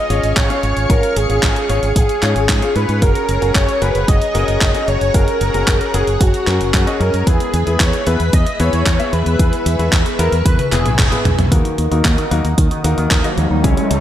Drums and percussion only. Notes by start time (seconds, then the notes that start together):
0.10 closed hi-hat
0.23 closed hi-hat
0.37 kick, clap, closed hi-hat
0.50 closed hi-hat
0.63 closed hi-hat
0.77 closed hi-hat
0.90 kick, closed hi-hat
1.03 closed hi-hat
1.16 closed hi-hat
1.30 closed hi-hat
1.43 kick, clap, closed hi-hat
1.56 closed hi-hat
1.70 closed hi-hat
1.83 closed hi-hat
1.96 kick, closed hi-hat
2.09 closed hi-hat
2.23 clap, closed hi-hat
2.36 closed hi-hat
2.49 kick, clap, closed hi-hat
2.62 closed hi-hat
2.76 closed hi-hat
2.89 closed hi-hat
3.02 kick, closed hi-hat
3.15 closed hi-hat
3.29 closed hi-hat
3.42 closed hi-hat
3.55 kick, clap, closed hi-hat
3.69 closed hi-hat
3.82 closed hi-hat
3.95 closed hi-hat
4.08 kick, closed hi-hat
4.22 closed hi-hat
4.35 closed hi-hat
4.48 closed hi-hat
4.61 kick, clap, closed hi-hat
4.75 closed hi-hat
4.88 closed hi-hat
5.01 closed hi-hat
5.14 kick, closed hi-hat
5.28 closed hi-hat
5.41 closed hi-hat
5.54 closed hi-hat
5.67 kick, clap, closed hi-hat
5.81 closed hi-hat
5.94 closed hi-hat
6.07 closed hi-hat
6.21 kick, closed hi-hat
6.34 closed hi-hat
6.47 clap, closed hi-hat
6.61 closed hi-hat
6.74 kick, clap, closed hi-hat
6.87 closed hi-hat
7.01 closed hi-hat
7.14 closed hi-hat
7.27 kick, closed hi-hat
7.40 closed hi-hat
7.54 closed hi-hat
7.67 closed hi-hat
7.80 kick, clap, closed hi-hat
7.93 closed hi-hat
8.07 closed hi-hat
8.20 closed hi-hat
8.33 kick, closed hi-hat
8.47 closed hi-hat
8.60 closed hi-hat
8.73 closed hi-hat
8.86 kick, clap, closed hi-hat
9.00 closed hi-hat
9.13 closed hi-hat
9.26 closed hi-hat
9.39 kick, closed hi-hat
9.53 closed hi-hat
9.66 closed hi-hat
9.79 closed hi-hat
9.92 kick, clap, closed hi-hat
10.06 closed hi-hat
10.19 closed hi-hat
10.32 closed hi-hat
10.46 kick, closed hi-hat, high tom
10.59 closed hi-hat, high tom
10.72 clap, closed hi-hat
10.86 closed hi-hat, mid tom
10.99 kick, clap, closed hi-hat, mid tom
11.12 closed hi-hat
11.25 closed hi-hat, mid tom
11.39 closed hi-hat, mid tom
11.52 kick, closed hi-hat
11.65 closed hi-hat
11.78 closed hi-hat
11.92 closed hi-hat
12.05 kick, clap, closed hi-hat
12.18 closed hi-hat
12.31 closed hi-hat
12.45 closed hi-hat
12.58 kick, closed hi-hat
12.71 closed hi-hat
12.84 closed hi-hat
12.98 closed hi-hat
13.11 kick, clap, closed hi-hat
13.24 closed hi-hat
13.38 closed hi-hat
13.64 kick, closed hi-hat
13.77 closed hi-hat
13.91 closed hi-hat